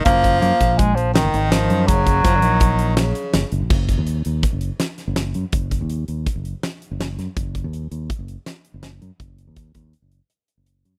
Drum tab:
CC |----------|----------|x---------|----------|
HH |xxxxxxxxxx|xxxxxxxxxx|-xxxxxxxxx|xxxxxxxxxx|
SD |------o-o-|------o-o-|------ooo-|------o-oo|
BD |oo-oo-----|ooo-o-----|oo--o-----|oo--o-----|

CC |----------|----------|
HH |xxxxxxxxxx|xxxxxxxxxx|
SD |------o-o-|----------|
BD |oo--o-----|o-oo------|